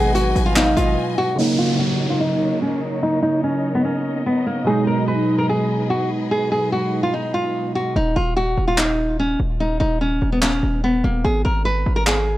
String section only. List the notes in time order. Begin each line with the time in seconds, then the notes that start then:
Already playing: F#3 B4 D#5 G#5
1.38 D#4 A#4 C#5 D#5
4.67 G#4 B4